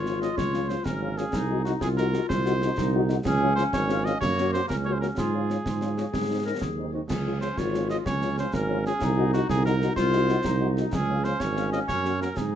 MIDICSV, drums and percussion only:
0, 0, Header, 1, 2, 480
1, 0, Start_track
1, 0, Key_signature, -5, "major"
1, 0, Tempo, 319881
1, 564, Time_signature, 6, 3, 24, 8
1, 18835, End_track
2, 0, Start_track
2, 0, Title_t, "Drums"
2, 88, Note_on_c, 9, 38, 40
2, 238, Note_off_c, 9, 38, 0
2, 330, Note_on_c, 9, 38, 47
2, 480, Note_off_c, 9, 38, 0
2, 567, Note_on_c, 9, 35, 76
2, 567, Note_on_c, 9, 38, 59
2, 717, Note_off_c, 9, 35, 0
2, 717, Note_off_c, 9, 38, 0
2, 808, Note_on_c, 9, 38, 45
2, 958, Note_off_c, 9, 38, 0
2, 1043, Note_on_c, 9, 38, 47
2, 1193, Note_off_c, 9, 38, 0
2, 1284, Note_on_c, 9, 35, 68
2, 1284, Note_on_c, 9, 38, 64
2, 1434, Note_off_c, 9, 35, 0
2, 1434, Note_off_c, 9, 38, 0
2, 1763, Note_on_c, 9, 38, 46
2, 1913, Note_off_c, 9, 38, 0
2, 1995, Note_on_c, 9, 35, 77
2, 1995, Note_on_c, 9, 38, 75
2, 2145, Note_off_c, 9, 35, 0
2, 2145, Note_off_c, 9, 38, 0
2, 2482, Note_on_c, 9, 38, 49
2, 2632, Note_off_c, 9, 38, 0
2, 2719, Note_on_c, 9, 35, 66
2, 2719, Note_on_c, 9, 38, 74
2, 2869, Note_off_c, 9, 35, 0
2, 2869, Note_off_c, 9, 38, 0
2, 2961, Note_on_c, 9, 38, 47
2, 3111, Note_off_c, 9, 38, 0
2, 3205, Note_on_c, 9, 38, 47
2, 3355, Note_off_c, 9, 38, 0
2, 3449, Note_on_c, 9, 35, 82
2, 3449, Note_on_c, 9, 38, 67
2, 3599, Note_off_c, 9, 35, 0
2, 3599, Note_off_c, 9, 38, 0
2, 3688, Note_on_c, 9, 38, 51
2, 3838, Note_off_c, 9, 38, 0
2, 3928, Note_on_c, 9, 38, 52
2, 4078, Note_off_c, 9, 38, 0
2, 4169, Note_on_c, 9, 35, 76
2, 4169, Note_on_c, 9, 38, 72
2, 4319, Note_off_c, 9, 35, 0
2, 4319, Note_off_c, 9, 38, 0
2, 4639, Note_on_c, 9, 38, 48
2, 4789, Note_off_c, 9, 38, 0
2, 4881, Note_on_c, 9, 35, 80
2, 4881, Note_on_c, 9, 38, 72
2, 4881, Note_on_c, 9, 49, 30
2, 5031, Note_off_c, 9, 35, 0
2, 5031, Note_off_c, 9, 38, 0
2, 5031, Note_off_c, 9, 49, 0
2, 5369, Note_on_c, 9, 38, 51
2, 5519, Note_off_c, 9, 38, 0
2, 5598, Note_on_c, 9, 35, 77
2, 5598, Note_on_c, 9, 38, 77
2, 5748, Note_off_c, 9, 35, 0
2, 5748, Note_off_c, 9, 38, 0
2, 5842, Note_on_c, 9, 38, 51
2, 5992, Note_off_c, 9, 38, 0
2, 6091, Note_on_c, 9, 38, 47
2, 6241, Note_off_c, 9, 38, 0
2, 6325, Note_on_c, 9, 35, 81
2, 6325, Note_on_c, 9, 38, 70
2, 6475, Note_off_c, 9, 35, 0
2, 6475, Note_off_c, 9, 38, 0
2, 6570, Note_on_c, 9, 38, 51
2, 6720, Note_off_c, 9, 38, 0
2, 6813, Note_on_c, 9, 38, 46
2, 6963, Note_off_c, 9, 38, 0
2, 7057, Note_on_c, 9, 35, 62
2, 7057, Note_on_c, 9, 38, 62
2, 7207, Note_off_c, 9, 35, 0
2, 7207, Note_off_c, 9, 38, 0
2, 7538, Note_on_c, 9, 38, 39
2, 7688, Note_off_c, 9, 38, 0
2, 7767, Note_on_c, 9, 35, 73
2, 7767, Note_on_c, 9, 38, 72
2, 7917, Note_off_c, 9, 35, 0
2, 7917, Note_off_c, 9, 38, 0
2, 8251, Note_on_c, 9, 38, 42
2, 8401, Note_off_c, 9, 38, 0
2, 8490, Note_on_c, 9, 35, 72
2, 8490, Note_on_c, 9, 38, 65
2, 8641, Note_off_c, 9, 35, 0
2, 8641, Note_off_c, 9, 38, 0
2, 8721, Note_on_c, 9, 38, 44
2, 8871, Note_off_c, 9, 38, 0
2, 8966, Note_on_c, 9, 38, 46
2, 9116, Note_off_c, 9, 38, 0
2, 9208, Note_on_c, 9, 35, 75
2, 9208, Note_on_c, 9, 38, 58
2, 9358, Note_off_c, 9, 35, 0
2, 9358, Note_off_c, 9, 38, 0
2, 9927, Note_on_c, 9, 35, 66
2, 9927, Note_on_c, 9, 38, 63
2, 10077, Note_off_c, 9, 35, 0
2, 10077, Note_off_c, 9, 38, 0
2, 10656, Note_on_c, 9, 35, 74
2, 10656, Note_on_c, 9, 38, 68
2, 10656, Note_on_c, 9, 49, 41
2, 10806, Note_off_c, 9, 35, 0
2, 10806, Note_off_c, 9, 38, 0
2, 10806, Note_off_c, 9, 49, 0
2, 11123, Note_on_c, 9, 38, 44
2, 11273, Note_off_c, 9, 38, 0
2, 11367, Note_on_c, 9, 35, 67
2, 11367, Note_on_c, 9, 38, 59
2, 11517, Note_off_c, 9, 35, 0
2, 11517, Note_off_c, 9, 38, 0
2, 11618, Note_on_c, 9, 38, 50
2, 11768, Note_off_c, 9, 38, 0
2, 11848, Note_on_c, 9, 38, 49
2, 11998, Note_off_c, 9, 38, 0
2, 12093, Note_on_c, 9, 35, 82
2, 12093, Note_on_c, 9, 38, 70
2, 12243, Note_off_c, 9, 35, 0
2, 12243, Note_off_c, 9, 38, 0
2, 12328, Note_on_c, 9, 38, 44
2, 12478, Note_off_c, 9, 38, 0
2, 12569, Note_on_c, 9, 38, 50
2, 12719, Note_off_c, 9, 38, 0
2, 12807, Note_on_c, 9, 35, 72
2, 12807, Note_on_c, 9, 38, 66
2, 12957, Note_off_c, 9, 35, 0
2, 12957, Note_off_c, 9, 38, 0
2, 13293, Note_on_c, 9, 38, 47
2, 13443, Note_off_c, 9, 38, 0
2, 13527, Note_on_c, 9, 35, 79
2, 13527, Note_on_c, 9, 38, 74
2, 13677, Note_off_c, 9, 35, 0
2, 13677, Note_off_c, 9, 38, 0
2, 14006, Note_on_c, 9, 38, 49
2, 14156, Note_off_c, 9, 38, 0
2, 14248, Note_on_c, 9, 35, 71
2, 14248, Note_on_c, 9, 38, 69
2, 14398, Note_off_c, 9, 35, 0
2, 14398, Note_off_c, 9, 38, 0
2, 14491, Note_on_c, 9, 38, 50
2, 14642, Note_off_c, 9, 38, 0
2, 14732, Note_on_c, 9, 38, 46
2, 14882, Note_off_c, 9, 38, 0
2, 14952, Note_on_c, 9, 35, 73
2, 14952, Note_on_c, 9, 38, 69
2, 15102, Note_off_c, 9, 35, 0
2, 15102, Note_off_c, 9, 38, 0
2, 15198, Note_on_c, 9, 38, 51
2, 15348, Note_off_c, 9, 38, 0
2, 15437, Note_on_c, 9, 38, 48
2, 15587, Note_off_c, 9, 38, 0
2, 15673, Note_on_c, 9, 35, 73
2, 15673, Note_on_c, 9, 38, 75
2, 15823, Note_off_c, 9, 35, 0
2, 15823, Note_off_c, 9, 38, 0
2, 16162, Note_on_c, 9, 38, 43
2, 16312, Note_off_c, 9, 38, 0
2, 16396, Note_on_c, 9, 35, 84
2, 16396, Note_on_c, 9, 38, 63
2, 16396, Note_on_c, 9, 49, 29
2, 16546, Note_off_c, 9, 35, 0
2, 16546, Note_off_c, 9, 38, 0
2, 16546, Note_off_c, 9, 49, 0
2, 16868, Note_on_c, 9, 38, 45
2, 17018, Note_off_c, 9, 38, 0
2, 17107, Note_on_c, 9, 35, 66
2, 17107, Note_on_c, 9, 38, 74
2, 17257, Note_off_c, 9, 35, 0
2, 17257, Note_off_c, 9, 38, 0
2, 17355, Note_on_c, 9, 38, 48
2, 17505, Note_off_c, 9, 38, 0
2, 17596, Note_on_c, 9, 38, 45
2, 17746, Note_off_c, 9, 38, 0
2, 17837, Note_on_c, 9, 35, 74
2, 17837, Note_on_c, 9, 38, 62
2, 17987, Note_off_c, 9, 35, 0
2, 17987, Note_off_c, 9, 38, 0
2, 18082, Note_on_c, 9, 38, 43
2, 18232, Note_off_c, 9, 38, 0
2, 18330, Note_on_c, 9, 38, 47
2, 18480, Note_off_c, 9, 38, 0
2, 18558, Note_on_c, 9, 35, 71
2, 18558, Note_on_c, 9, 38, 63
2, 18708, Note_off_c, 9, 35, 0
2, 18708, Note_off_c, 9, 38, 0
2, 18835, End_track
0, 0, End_of_file